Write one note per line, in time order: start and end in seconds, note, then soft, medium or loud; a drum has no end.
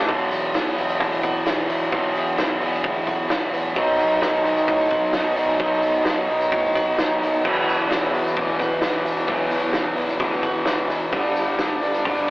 0.08 0.28 E1 medium
0.08 0.55 E2 medium
0.08 0.33 B2 medium
0.08 0.54 E3 medium
0.08 0.30 E3 loud
0.08 0.56 F#3 loud
0.08 0.57 B3 loud
0.08 0.57 E4 loud
0.08 kick loud
0.08 open hi-hat medium
0.08 tambourine soft
0.31 0.51 E1 loud
0.31 0.55 B2 medium
0.31 0.58 E3 medium
0.31 0.78 B3 medium
0.31 open hi-hat medium
0.31 tambourine medium
0.43 tambourine soft
0.54 0.74 B1 medium
0.54 1.45 E2 medium
0.54 0.78 B2 medium
0.54 1.45 E3 medium
0.54 0.80 F#3 medium
0.54 0.79 B3 medium
0.54 0.77 E4 medium
0.54 snare loud
0.54 open hi-hat medium
0.54 tambourine medium
0.58 0.76 E3 medium
0.66 tambourine soft
0.77 0.97 E1 medium
0.77 1.46 B2 medium
0.77 1.47 E3 medium
0.77 1.47 B3 medium
0.77 1.48 E4 medium
0.77 open hi-hat medium
0.77 tambourine soft
0.81 1.46 F#3 medium
0.88 tambourine medium
1.01 1.20 D2 medium
1.01 1.45 E4 medium
1.01 kick loud
1.01 open hi-hat medium
1.11 tambourine soft
1.23 1.43 E1 medium
1.23 2.42 F#4 medium
1.23 kick medium
1.23 open hi-hat medium
1.23 tambourine medium
1.45 1.66 E1 medium
1.45 1.91 E2 medium
1.45 1.70 B2 medium
1.45 1.89 E3 medium
1.45 1.67 E3 medium
1.45 1.71 F#3 medium
1.45 1.69 B3 loud
1.45 1.67 E4 medium
1.45 snare loud
1.45 open hi-hat medium
1.45 tambourine medium
1.68 1.89 E1 medium
1.68 1.92 B2 medium
1.68 1.93 E3 medium
1.68 1.92 F#3 medium
1.68 1.93 B3 medium
1.68 1.93 E4 medium
1.68 open hi-hat medium
1.68 tambourine medium
1.81 tambourine soft
1.91 2.12 E1 medium
1.91 2.37 E2 medium
1.91 2.17 B2 medium
1.91 2.36 E3 loud
1.91 2.13 E3 medium
1.91 2.38 F#3 loud
1.91 2.39 B3 medium
1.91 2.39 E4 loud
1.91 kick loud
1.91 open hi-hat medium
1.91 tambourine soft
2.15 2.35 E1 medium
2.15 2.38 B2 medium
2.15 2.39 E3 medium
2.15 2.61 B3 medium
2.15 open hi-hat medium
2.15 tambourine medium
2.27 tambourine soft
2.37 2.58 B1 medium
2.37 2.84 E2 medium
2.37 2.62 B2 medium
2.37 2.83 E3 medium
2.37 2.60 E3 loud
2.37 2.63 F#3 medium
2.37 2.62 B3 medium
2.37 2.59 E4 medium
2.37 snare loud
2.37 open hi-hat medium
2.37 tambourine medium
2.60 2.81 E1 medium
2.60 3.31 B2 medium
2.60 3.31 E3 medium
2.60 3.29 F#3 medium
2.60 3.31 B3 medium
2.60 3.31 E4 medium
2.60 open hi-hat medium
2.60 tambourine soft
2.74 tambourine medium
2.84 3.04 D2 medium
2.84 3.30 E4 medium
2.84 kick loud
2.84 open hi-hat medium
2.97 tambourine soft
3.07 3.27 E1 medium
3.07 4.90 F#4 medium
3.07 kick medium
3.07 open hi-hat medium
3.07 tambourine medium
3.28 3.50 E1 medium
3.28 3.75 E2 medium
3.28 3.54 B2 medium
3.28 3.74 E3 medium
3.28 3.54 F#3 medium
3.28 3.53 B3 loud
3.28 3.50 E4 loud
3.28 snare loud
3.28 open hi-hat medium
3.28 tambourine medium
3.33 3.52 E3 medium
3.51 3.73 A1 medium
3.51 3.75 E3 medium
3.51 3.77 F#3 medium
3.51 3.78 B3 medium
3.51 3.74 E4 medium
3.51 open hi-hat medium
3.51 tambourine medium
3.56 3.74 B2 medium
3.75 3.96 B1 medium
3.75 5.13 B2 loud
3.75 4.20 B2 medium
3.75 4.19 D#3 medium
3.75 4.01 F#3 loud
3.75 4.21 F#3 loud
3.75 4.23 B3 loud
3.75 3.98 B3 medium
3.75 4.24 D#4 loud
3.75 kick loud
3.75 open hi-hat medium
3.98 4.19 B1 loud
3.98 4.22 F#3 medium
3.98 4.23 B3 medium
3.98 4.44 B3 medium
3.98 open hi-hat medium
3.98 tambourine medium
4.11 tambourine soft
4.20 4.42 F#2 medium
4.20 5.12 B2 medium
4.20 4.67 D#3 medium
4.20 4.47 F#3 medium
4.20 4.45 F#3 medium
4.20 4.45 B3 medium
4.20 4.43 B3 loud
4.20 4.43 D#4 medium
4.20 snare loud
4.20 open hi-hat medium
4.20 tambourine medium
4.43 4.65 B1 medium
4.43 5.14 F#3 medium
4.43 5.15 F#3 medium
4.43 5.15 B3 medium
4.43 5.16 B3 medium
4.43 5.15 D#4 medium
4.43 open hi-hat medium
4.43 tambourine soft
4.57 tambourine medium
4.67 4.88 A2 loud
4.67 5.12 D#4 medium
4.67 kick loud
4.67 open hi-hat medium
4.67 tambourine soft
4.79 tambourine soft
4.90 5.11 B1 medium
4.90 6.75 F#4 medium
4.90 kick medium
4.90 open hi-hat medium
4.90 tambourine medium
5.13 5.34 B1 medium
5.13 5.56 B2 medium
5.13 5.57 D#3 medium
5.13 5.38 F#3 medium
5.13 5.39 F#3 medium
5.13 5.35 B3 medium
5.13 5.38 B3 loud
5.13 5.35 D#4 loud
5.13 snare loud
5.13 open hi-hat medium
5.13 tambourine medium
5.35 5.57 B1 medium
5.35 5.59 F#3 medium
5.35 5.60 B3 medium
5.35 5.59 D#4 medium
5.35 open hi-hat medium
5.35 tambourine medium
5.40 5.59 F#3 medium
5.57 5.80 B1 medium
5.57 6.28 B2 medium
5.57 6.03 B2 medium
5.57 6.02 D#3 loud
5.57 6.05 F#3 loud
5.57 5.84 F#3 loud
5.57 6.06 B3 loud
5.57 5.81 B3 loud
5.57 6.06 D#4 medium
5.57 kick loud
5.57 open hi-hat medium
5.82 6.03 B1 medium
5.82 6.06 F#3 medium
5.82 6.07 B3 medium
5.82 6.29 B3 medium
5.82 open hi-hat medium
5.82 tambourine medium
5.94 tambourine soft
6.04 6.26 F#2 medium
6.04 6.51 B2 medium
6.04 6.51 D#3 medium
6.04 6.31 F#3 medium
6.04 6.30 F#3 medium
6.04 6.29 B3 medium
6.04 6.28 B3 loud
6.04 6.26 D#4 medium
6.04 snare loud
6.04 open hi-hat medium
6.04 tambourine medium
6.18 tambourine soft
6.28 6.49 B1 medium
6.28 6.98 F#3 medium
6.28 6.99 B3 medium
6.28 6.99 D#4 medium
6.28 open hi-hat medium
6.41 tambourine medium
6.52 6.72 A2 loud
6.52 6.98 D#4 medium
6.52 kick loud
6.52 open hi-hat medium
6.52 tambourine soft
6.65 tambourine soft
6.75 6.95 B1 medium
6.75 7.48 F#4 medium
6.75 kick medium
6.75 open hi-hat medium
6.75 tambourine medium
6.97 7.19 B1 medium
6.97 7.42 B2 medium
6.97 7.42 D#3 medium
6.97 7.23 F#3 medium
6.97 7.22 F#3 medium
6.97 7.20 B3 medium
6.97 7.21 B3 medium
6.97 7.18 D#4 loud
6.97 snare loud
6.97 open hi-hat medium
6.97 tambourine medium
7.19 7.47 D#2 medium
7.19 7.45 F#3 medium
7.19 7.44 F#3 medium
7.19 10.70 B3 medium
7.19 7.45 B3 medium
7.19 7.42 D#4 medium
7.19 open hi-hat medium
7.19 tambourine medium
7.34 tambourine soft
7.43 7.64 E1 medium
7.43 7.89 E2 medium
7.43 7.67 B2 loud
7.43 7.87 E3 medium
7.43 7.65 E3 loud
7.43 7.89 F#3 loud
7.43 7.90 B3 medium
7.43 7.91 E4 loud
7.43 kick loud
7.43 tambourine soft
7.43 crash medium
7.65 7.87 E1 medium
7.65 7.90 B2 medium
7.65 7.92 E3 medium
7.65 8.14 B3 medium
7.65 open hi-hat medium
7.65 tambourine medium
7.80 tambourine soft
7.88 8.10 B1 medium
7.88 8.80 E2 medium
7.88 8.13 B2 medium
7.88 8.80 E3 medium
7.88 8.15 F#3 medium
7.88 8.14 B3 medium
7.88 8.11 E4 medium
7.88 snare loud
7.88 open hi-hat medium
7.88 tambourine loud
7.92 8.12 E3 loud
8.04 tambourine soft
8.12 8.33 E1 medium
8.12 8.80 B2 medium
8.12 8.83 E3 medium
8.12 8.81 F#3 medium
8.12 8.83 B3 medium
8.12 8.84 E4 medium
8.12 open hi-hat medium
8.12 tambourine soft
8.27 tambourine medium
8.37 8.56 D2 loud
8.37 9.26 E2 medium
8.37 9.28 B2 medium
8.37 9.30 E3 medium
8.37 8.83 E4 medium
8.37 kick loud
8.37 open hi-hat medium
8.50 tambourine soft
8.60 8.79 E1 medium
8.60 9.75 F#4 medium
8.60 kick medium
8.60 open hi-hat medium
8.60 tambourine medium
8.80 9.03 E1 medium
8.80 9.26 E2 medium
8.80 9.05 B2 medium
8.80 9.26 E3 medium
8.80 9.03 E3 medium
8.80 9.06 F#3 medium
8.80 9.05 B3 medium
8.80 snare loud
8.80 open hi-hat medium
8.80 tambourine medium
8.84 9.03 E4 loud
9.04 9.26 E1 medium
9.04 9.27 B2 medium
9.04 9.29 E3 medium
9.04 9.27 F#3 medium
9.04 9.29 B3 medium
9.04 9.30 E4 medium
9.04 open hi-hat medium
9.04 tambourine medium
9.18 tambourine soft
9.27 9.48 E1 medium
9.27 9.71 E2 medium
9.27 9.51 B2 medium
9.27 9.74 E3 medium
9.27 9.49 E3 loud
9.27 9.74 F#3 loud
9.27 9.76 B3 loud
9.27 9.77 E4 loud
9.27 kick loud
9.27 open hi-hat medium
9.27 tambourine soft
9.50 9.72 E1 medium
9.50 9.73 B2 medium
9.50 9.75 E3 medium
9.50 9.97 B3 medium
9.50 open hi-hat medium
9.50 tambourine medium
9.72 9.94 B1 medium
9.72 10.20 E2 medium
9.72 9.97 B2 loud
9.72 10.65 E3 medium
9.72 9.95 E3 medium
9.72 9.99 F#3 medium
9.72 9.98 B3 medium
9.72 snare loud
9.72 open hi-hat medium
9.72 tambourine loud
9.78 9.96 E4 medium
9.96 10.18 E1 medium
9.96 10.65 B2 medium
9.96 10.67 E3 medium
9.96 10.68 B3 medium
9.96 10.69 E4 medium
9.96 open hi-hat medium
9.96 tambourine soft
10.00 10.66 F#3 medium
10.09 tambourine medium
10.19 10.40 D2 loud
10.19 11.12 E2 medium
10.19 11.12 B2 medium
10.19 10.67 E4 medium
10.19 kick loud
10.19 open hi-hat medium
10.19 tambourine soft
10.23 11.14 E3 medium
10.33 tambourine soft
10.42 10.63 E1 medium
10.42 11.13 F#4 medium
10.42 kick medium
10.42 open hi-hat medium
10.42 tambourine medium
10.65 10.87 E1 medium
10.65 11.11 E2 medium
10.65 10.90 B2 medium
10.65 11.12 E3 loud
10.65 10.88 E3 medium
10.65 10.91 F#3 medium
10.65 10.90 B3 loud
10.65 snare loud
10.65 open hi-hat medium
10.65 tambourine loud
10.69 10.88 E4 loud
10.88 11.10 E1 medium
10.88 11.13 B2 medium
10.88 11.14 E3 medium
10.88 11.14 B3 medium
10.88 11.15 E4 medium
10.88 open hi-hat medium
10.88 tambourine medium
10.93 11.13 F#3 medium
11.01 tambourine soft
11.11 11.33 G1 loud
11.11 11.57 G2 loud
11.11 12.30 G2 loud
11.11 11.57 D3 loud
11.11 11.37 D3 medium
11.11 11.59 E3 medium
11.11 11.59 G3 medium
11.11 11.35 G3 loud
11.11 11.60 B3 loud
11.11 11.61 D4 loud
11.11 kick loud
11.11 open hi-hat medium
11.11 tambourine soft
11.35 11.56 G1 loud
11.35 11.58 D3 medium
11.35 11.60 G3 medium
11.35 11.82 B3 medium
11.35 open hi-hat medium
11.35 tambourine medium
11.47 tambourine soft
11.58 11.79 D2 medium
11.58 12.30 G2 medium
11.58 12.05 D3 medium
11.58 11.83 D3 loud
11.58 12.30 E3 medium
11.58 11.85 G3 medium
11.58 11.81 G3 medium
11.58 11.83 B3 medium
11.58 11.81 D4 medium
11.58 snare loud
11.58 open hi-hat medium
11.58 tambourine loud
11.71 tambourine soft
11.81 12.02 G1 medium
11.81 12.30 D3 medium
11.81 12.30 G3 medium
11.81 12.30 B3 medium
11.81 12.30 D4 medium
11.81 open hi-hat medium
11.81 tambourine soft
11.94 tambourine medium
12.05 12.25 E2 medium
12.05 12.30 G2 medium
12.05 12.30 D3 medium
12.05 12.30 G3 medium
12.05 12.30 D4 medium
12.05 kick loud
12.05 open hi-hat medium
12.18 tambourine soft